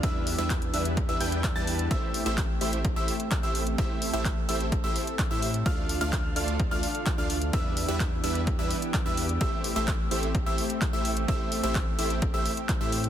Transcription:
<<
  \new Staff \with { instrumentName = "Grand piano" } { \time 4/4 \key a \minor \tempo 4 = 128 e'''8. e'''16 r8 e'''16 r8 e'''16 g'''8. a'''8. | e'''8. e'''16 r8 e'''16 r8 e'''16 r8. e'''16 r8 | e'''8. e'''16 r8 e'''16 r8 e'''16 r8. e'''16 r8 | f'''8. f'''16 r8 f'''16 r8 f'''16 r8. f'''16 r8 |
e'''8. e'''16 r8 e'''16 r8 e'''16 r8. e'''16 r8 | e'''8. e'''16 r8 e'''16 r8 e'''16 r8. e'''16 r8 | e'''8. e'''16 r8 e'''16 r8 e'''16 r8. e'''16 r8 | }
  \new Staff \with { instrumentName = "Supersaw synth" } { \time 4/4 \key a \minor <g d' e' b' e''>8. <g d' e' b' e''>16 r8 <g d' e' b' e''>16 r8 <g d' e' b' e''>16 <g d' e' b' g''>8. <g d' e' b' a''>8. | <a e' g' c'' e''>8. <a e' g' c'' e''>16 r8 <a e' g' c'' e''>16 r8 <a e' g' c'' e''>16 r8. <a e' g' c'' e''>16 r8 | <a e' g' c'' e''>8. <a e' g' c'' e''>16 r8 <a e' g' c'' e''>16 r8 <a e' g' c'' e''>16 r8. <a e' g' c'' e''>16 r8 | <a d' f' d'' f''>8. <a d' f' d'' f''>16 r8 <a d' f' d'' f''>16 r8 <a d' f' d'' f''>16 r8. <a d' f' d'' f''>16 r8 |
<g d' e' b' e''>8. <g d' e' b' e''>16 r8 <g d' e' b' e''>16 r8 <g d' e' b' e''>16 r8. <g d' e' b' e''>16 r8 | <a e' g' c'' e''>8. <a e' g' c'' e''>16 r8 <a e' g' c'' e''>16 r8 <a e' g' c'' e''>16 r8. <a e' g' c'' e''>16 r8 | <a e' g' c'' e''>8. <a e' g' c'' e''>16 r8 <a e' g' c'' e''>16 r8 <a e' g' c'' e''>16 r8. <a e' g' c'' e''>16 r8 | }
  \new Staff \with { instrumentName = "Analog synth pad" } { \time 4/4 \key a \minor << { g'1~ | g'1 | a'1 | a'1 |
g'1~ | g'1~ | g'1 | } \\ { <e b d'>1 | <a c'>1~ | <a c'>1 | <d d' f'>1 |
<e b>1 | <a c'>1~ | <a c'>1 | } >> }
  \new Staff \with { instrumentName = "Sub bass" } { \clef bass \time 4/4 \key a \minor e,8. e,8. e,8. e,16 e,8. e,8. | a,,8. a,,8. a,,8. a,,16 r8. a,,8. | a,,8. a,,8. a,,8. a,,16 r8. a,8. | d,8. d,8. d,8. d,16 r8. d,8. |
e,8. e,8. e,8. e,16 r8. e,8. | a,,8. a,,8. a,,8. a,,16 r8. a,,8. | a,,8. a,,8. a,,8. a,,16 r8. a,8. | }
  \new DrumStaff \with { instrumentName = "Drums" } \drummode { \time 4/4 <hh bd>8 hho16 hh16 <hc hh bd>16 hh16 hho16 hh16 <hh bd>16 hh16 hho16 hh16 <hc hh bd>8 hho16 hh16 | <hh bd>8 hho16 hh16 <hc hh bd>8 hho16 hh16 <hh bd>8 hho16 hh16 <hc hh bd>8 hho16 hh16 | <hh bd>8 hho16 hh16 <hc hh bd>8 hho16 hh16 <hh bd>8 hho16 hh16 <hc hh bd>8 hho16 hh16 | <hh bd>8 hho16 hh16 <hc hh bd>8 hho16 hh16 <hh bd>8 hho16 hh16 <hc hh bd>8 hho16 hh16 |
<hh bd>8 hho16 hh16 <hc hh bd>8 hho16 hh16 <hh bd>8 hho16 hh16 <hc hh bd>8 hho16 hh16 | <hh bd>8 hho16 hh16 <hc hh bd>8 hho16 hh16 <hh bd>8 hho16 hh16 <hc hh bd>8 hho16 hh16 | <hh bd>8 hho16 hh16 <hc hh bd>8 hho16 hh16 <hh bd>8 hho16 hh16 <hc hh bd>8 hho16 hh16 | }
>>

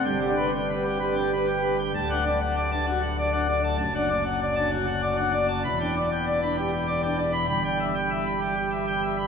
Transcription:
<<
  \new Staff \with { instrumentName = "Pipe organ" } { \time 3/4 \key g \major \tempo 4 = 97 << { g''16 g'16 b'16 g''16 b'16 g'16 b'16 g''16 b'16 g'16 b'16 g''16 | \key d \major a''16 fis''16 d''16 fis''16 d''16 a''16 fis'16 fis''16 d''16 fis''16 d''16 a''16 | a''16 fis''16 d''16 fis''16 d''16 a''16 fis'16 fis''16 d''16 fis''16 d''16 a''16 | b''16 g''16 d''16 g''16 d''16 b''16 g'16 g''16 d''16 g''16 d''16 b''16 |
b''16 g''16 e''16 g''16 e''16 b''16 g'16 g''16 e''16 g''16 e''16 b''16 | } \\ { \tuplet 3/2 { g,8 d'8 r8 r4 d'8 } r4 | d,16 d'16 r8. d'16 r8. d'16 r8 | fis,16 d'16 r8. d'16 r8. d'16 r8 | e,16 d'16 r8. d'16 r8. d'16 r8 |
g,2. | } >> }
  \new Staff \with { instrumentName = "Pipe organ" } { \clef bass \time 3/4 \key g \major g,,2. | \key d \major d,,2. | fis,,2. | e,,2. |
g,,2. | }
>>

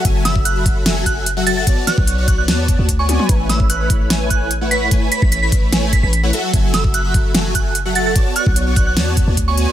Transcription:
<<
  \new Staff \with { instrumentName = "Synth bell" } { \time 4/4 \key a \major \tempo 4 = 148 r8 e'''8 fis'''8 r4 fis'''8 r8 a'''16 a'''16 | r8 fis'''4 fis'''16 fis'''16 r4 r16 cis'''8. | r8 e'''8 fis'''8 r4 fis'''8 r8 b'''8 | r8 b'''16 b'''16 b'''16 b'''16 r4 b'''16 b'''16 r4 |
r8 e'''8 fis'''8 r4 fis'''8 r8 a'''16 a'''16 | r8 fis'''4 fis'''16 fis'''16 r4 r16 cis'''8. | }
  \new Staff \with { instrumentName = "Analog polysynth" } { \time 4/4 \key a \major <fis fis' a' e'' gis''>8 <fis fis' a' e'' b''>8. <fis fis' a' e'' b''>8. <fis fis' a' e'' gis''>4 r16 <fis fis' a' e'' fis''>16 <fis fis' a' e'' fis''>8 | <b fis' cis'' d'' a''>8 <b fis' cis'' d'' cis'''>8. <b fis' cis'' d'' cis'''>8. <b fis' cis'' d'' a''>4 r16 <b fis' cis'' d'' gis''>16 <b fis' cis'' d'' gis''>8 | <a e' b' cis'' gis''>8 <a e' b' cis'' b''>8. <a e' b' cis'' b''>8. <a e' b' cis'' gis''>4 r16 <a e' b' cis'' fis''>16 <a e' b' cis'' fis''>8 | <a e' b' cis'' gis''>8 <a e' b' cis'' b''>8. <a e' b' cis'' b''>8. <a e' b' cis'' gis''>4 r16 <a e' b' cis'' fis''>16 <fis fis' a' e'' fis''>8 |
<a' e'' gis''>8 <fis fis' a' e'' b''>8. <fis fis' a' e'' b''>8. <fis fis' a' e'' gis''>4 r16 <fis fis' a' e'' fis''>16 <fis fis' a' e'' fis''>8 | <b fis' cis'' d'' a''>8 <b fis' cis'' d'' cis'''>8. <b fis' cis'' d'' cis'''>8. <b fis' cis'' d'' a''>4 r16 <b fis' cis'' d'' gis''>16 <b fis' cis'' d'' gis''>8 | }
  \new Staff \with { instrumentName = "808-style bass" } { \clef bass \time 4/4 \key a \major fis,,1 | r8. b,,4~ b,,16 e,8. d,4 r16 | a,,1~ | a,,8 r16 a,,2 a,,8. r8 |
fis,,1 | r8. b,,4~ b,,16 e,8. d,4 r16 | }
  \new DrumStaff \with { instrumentName = "Drums" } \drummode { \time 4/4 <hh bd>8 <hh sn>16 bd16 hh8 <hh bd>8 <hh sn>8 <hh bd>8 hh8 hh8 | <hh bd>8 <hh sn>16 bd16 hh8 <hh bd>8 <hh sn>8 <hh bd>8 <hh bd>8 <hh tommh>16 toml16 | <hh bd>8 <hh sn>16 bd16 hh8 <hh bd>8 <hh sn>8 <hh bd>8 hh8 hh8 | <hh bd>8 hh16 bd16 hh8 <hh bd>8 <hh sn>8 <hh bd>8 hh8 hh8 |
<hh bd>8 <hh sn>16 bd16 hh8 <hh bd>8 <hh sn>8 <hh bd>8 hh8 hh8 | <hh bd>8 hh16 bd16 hh8 <hh bd>8 <hh sn>8 <hh bd>8 <hh bd>8 hh8 | }
>>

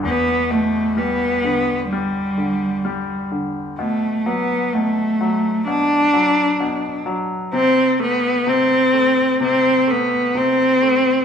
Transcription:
<<
  \new Staff \with { instrumentName = "Cello" } { \time 4/4 \key e \minor \tempo 4 = 64 b8 a8 b4 g4. r8 | a8 b8 a4 d'4. r8 | c'8 b8 c'4 c'8 b8 c'4 | }
  \new Staff \with { instrumentName = "Grand piano" } { \clef bass \time 4/4 \key e \minor e,8 b,8 g8 d8 g8 d8 g8 d8 | b,8 fis8 b,8 fis8 b,8 fis8 b,8 fis8 | c8 a8 c8 a8 c8 a8 c8 a8 | }
>>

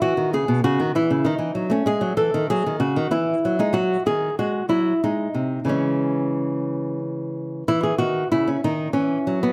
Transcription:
\new Staff \with { instrumentName = "Nylon-string guitar" } { \clef bass \time 3/4 \key cis \minor \tempo 4 = 95 << { fis'8 gis'8 fis'8 e'8 dis'8. cis'16 | gis'8 a'8 gis'8 fis'8 e'8. dis'16 | fis'8 gis'8 fis'8 e'8 dis'4 | cis'2 r4 |
e'16 gis'16 fis'8 e'16 cis'16 dis'8 cis'8. b16 | } \\ { e16 dis16 cis16 b,16 cis16 dis16 e16 cis16 dis16 e16 fis16 a16 | gis16 fis16 e16 dis16 fis16 dis16 cis16 dis16 e8 fis16 gis16 | fis8 dis8 gis8 fis8 gis8 bis,8 | <cis e gis>2. |
e8 dis8 cis8 dis8 e8 fis8 | } >> }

